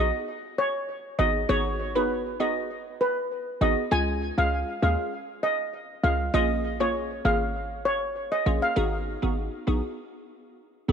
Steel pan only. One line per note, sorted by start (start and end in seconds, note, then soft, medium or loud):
0.00 0.19 D#5 medium
0.58 0.70 C#5 medium
1.19 1.30 D#5 medium
1.49 1.61 C#5 loud
1.96 2.17 B4 medium
2.40 2.62 D#5 medium
3.01 3.12 B4 medium
3.61 3.73 D#5 medium
3.92 4.03 G#5 loud
4.38 4.59 F5 medium
4.83 5.04 F5 medium
5.43 5.54 D#5 medium
6.04 6.15 F5 medium
6.34 6.45 D#5 loud
6.80 7.02 C#5 medium
7.25 7.46 F5 medium
7.85 7.97 C#5 medium
8.32 8.42 D#5 medium
8.62 8.72 F5 medium